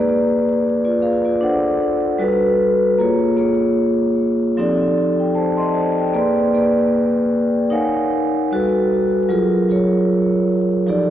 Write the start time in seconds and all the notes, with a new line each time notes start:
Already playing: A#3 G#4 B4 D5
0.85 F4 D5
1.02 G#4 F5
1.25 F4 D5
1.41 D4 A4 C5 F#5
2.18 G3 F#4 A4 B4
2.98 A#3 F4 G#4 C#5
3.37 A#3 F4 G#4 C#5
4.57 F3 C4 D#4 G4 A4 D5
5.19 G5
5.35 C5 A5
5.57 D#5 C6
5.74 C5 A5
5.99 G5
6.14 A#3 G#4 B4 D5
6.54 A#3 G#4 B4 D5
7.70 D#4 A#4 C#5 F5 F#5 G#5
8.51 G3 F#4 A4 B4
9.29 F#3 F4 G#4 A#4
9.69 F#3 F4 G#4 C#5
10.87 F3 D#4 G4 A4 D5